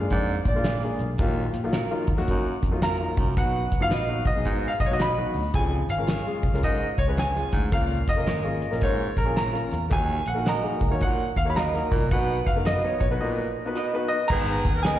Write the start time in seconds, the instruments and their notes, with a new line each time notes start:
Already playing: grand piano F5
0.00 upright piano G#3 A#3 D4 G#4
0.10 picked electric bass F2, baritone saxophone G#2, grand piano D5, kick, closed hi-hat
0.45 picked electric bass A#2, grand piano D5, kick, closed hi-hat
0.55 upright piano G#3 A#3 D4 F4
0.64 clean electric guitar F4 G#4 D5, snare, closed hi-hat
0.82 upright piano G#3 A#3 D4 G#4, snare
0.99 picked electric bass B1, closed hi-hat
1.18 picked electric bass A#1, baritone saxophone D#2, upright piano F#3 A#3 D#4 F4, kick, closed hi-hat
1.54 picked electric bass A#2, closed hi-hat
1.64 upright piano F#3 A#3 D#4 F4
1.73 clean electric guitar F#4 A#4 F5, snare, closed hi-hat
1.91 upright piano F#3 A#3 D#4 F4
2.07 picked electric bass D#2, kick, closed hi-hat
2.17 picked electric bass F2, upright piano F#3 A#3 D#4 F#4, snare
2.27 baritone saxophone F#2, kick, closed hi-hat
2.46 muted picked electric bass stroke
2.63 picked electric bass F2, kick, closed hi-hat
2.71 upright piano F#3 A#3 D#4 F4
2.82 clean electric guitar F#4 A#4 F5, grand piano A#5, snare, closed hi-hat
2.99 upright piano F#3 A#3 D#4 F4
3.17 picked electric bass C2, baritone saxophone F#2, kick, closed hi-hat
3.36 picked electric bass B1, baritone saxophone B2, upright piano F#3 B3 D#4 F#4, grand piano F#5, kick, closed hi-hat
3.72 picked electric bass F#1, kick, closed hi-hat
3.80 upright piano F#3 B3 D#4 F4, grand piano F5
3.91 picked electric bass A#1, clean electric guitar F#4 B4 D#5, snare, closed hi-hat
4.08 upright piano F#3 B3 D#4 F#4
4.25 picked electric bass B1, grand piano D#5, kick, closed hi-hat
4.36 upright piano F#3 B3 D#4 G#4
4.45 baritone saxophone G#2, kick, closed hi-hat
4.64 muted picked electric bass stroke
4.68 grand piano F5
4.80 picked electric bass B1, grand piano D#5, kick, closed hi-hat
4.86 upright piano F#3, grand piano C#5
4.90 upright piano B3 D#4 F#4, grand piano D#5
4.99 clean electric guitar F#4 B4 D#5, grand piano B5, snare, closed hi-hat
5.18 upright piano F#3 B3 D#4 F#4
5.34 picked electric bass D2, open hi-hat
5.54 picked electric bass C#2, baritone saxophone F2, upright piano G#3 C#4 F4 G#4, grand piano G#5, kick, closed hi-hat
5.88 picked electric bass G#1, grand piano F5, closed hi-hat
5.97 upright piano G#3 C#4 F4 A#4
6.07 clean electric guitar F4 G#4 C#5, snare, closed hi-hat
6.26 upright piano G#3 C#4 F4 G#4
6.43 picked electric bass B1, kick, closed hi-hat
6.53 picked electric bass C#2, upright piano G#3 C#4 F4 A#4, snare
6.63 baritone saxophone G#2, grand piano D#5, kick, closed hi-hat
6.80 muted picked electric bass stroke
6.98 picked electric bass C#2, grand piano C#5, kick, closed hi-hat
7.07 upright piano G#3 C#4 F4 B4
7.17 clean electric guitar F4 G#4 C#5, grand piano G#5, snare, closed hi-hat
7.36 upright piano G#3 C#4 F4 G#4, snare
7.52 picked electric bass D2, baritone saxophone G#2, kick, snare, closed hi-hat
7.72 picked electric bass C#2, baritone saxophone A#2, upright piano A#3 C#4 F4 A#4, grand piano F5, kick, closed hi-hat
8.08 picked electric bass F1, grand piano D#5, kick, closed hi-hat
8.16 upright piano A#3 C#4 F4 A#4
8.27 picked electric bass G#1, clean electric guitar F4 A#4 C#5, snare, closed hi-hat
8.44 upright piano A#3 C#4 F4 G#4
8.62 closed hi-hat
8.71 picked electric bass A#1, upright piano A#3 C#4 F4 A#4, snare
8.81 baritone saxophone G#2, grand piano C#5, kick, closed hi-hat
9.00 muted picked electric bass stroke
9.17 picked electric bass A#1, grand piano A#4, kick, closed hi-hat
9.25 upright piano A#3 C#4 F4 G#4
9.36 clean electric guitar F4 A#4 C#5, grand piano A#5, snare, closed hi-hat
9.53 upright piano A#3 C#4 F4 A#4, snare
9.71 picked electric bass E2, snare, closed hi-hat
9.90 picked electric bass D#2, baritone saxophone D#2, upright piano A#3 D#4 F#4 A#4, grand piano G#5, kick, closed hi-hat
10.26 picked electric bass A#1, grand piano F#5, closed hi-hat
10.34 upright piano A#3 D#4 F#4 A#4
10.46 clean electric guitar F#4 A#4 D#5, grand piano A#5, snare, closed hi-hat
10.63 upright piano A#3 D#4 F#4 G#4
10.81 picked electric bass C#2, kick, closed hi-hat
10.90 picked electric bass D#2, upright piano A#3 D#4 F#4 C#5
11.01 baritone saxophone A#2, grand piano F#5, kick, closed hi-hat
11.20 muted picked electric bass stroke
11.36 picked electric bass D#2, grand piano F5, kick, closed hi-hat
11.45 upright piano A#3 D#4 F#4 C#5
11.50 grand piano B5
11.56 clean electric guitar F#4 A#4 D#5, grand piano A#5, snare, closed hi-hat
11.74 upright piano A#3 D#4 F#4 A#4, snare
11.91 picked electric bass C2, baritone saxophone A#2, kick, open hi-hat
12.11 picked electric bass B1, baritone saxophone B2, upright piano B3 D#4 F#4 B4, grand piano F#5, kick, closed hi-hat
12.46 picked electric bass F#1, grand piano F5, kick, closed hi-hat
12.56 upright piano B3 D#4 F#4 A#4
12.65 clean electric guitar F#4 B4 D#5, grand piano D#5, snare, closed hi-hat
12.84 upright piano B3 D#4 F#4 C#5
13.00 picked electric bass A#1, grand piano C#5, kick, closed hi-hat
13.11 picked electric bass B1, upright piano B3 D#4 F#4 B4
13.21 baritone saxophone A#2, grand piano D#5
13.66 upright piano B3 D#4 F#4 B4
13.76 clean electric guitar F#4 B4 D#5
13.93 upright piano B3 D#4 F#4 B4
14.08 grand piano D#5
14.28 picked electric bass G#1, baritone saxophone G#2, saxophone section D#3 B3 G#4, upright piano B3 D#4 G#4, grand piano A#5, kick, crash
14.32 upright piano B4
14.65 picked electric bass D#2, kick, closed hi-hat
14.75 saxophone section D#3 B3 A#4
14.83 upright piano B3 D#4 G#4 B4, clean electric guitar G#4 B4 D#5, grand piano G#5, snare, closed hi-hat